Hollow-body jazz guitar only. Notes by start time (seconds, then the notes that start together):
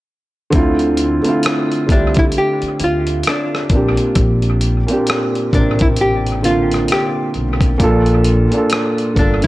1.92 D4
2.19 E4
2.38 G4
2.84 F4
3.29 D4
5.55 D4
5.82 E4
6.01 G4
6.45 F4
6.92 G4
9.19 D4
9.44 E4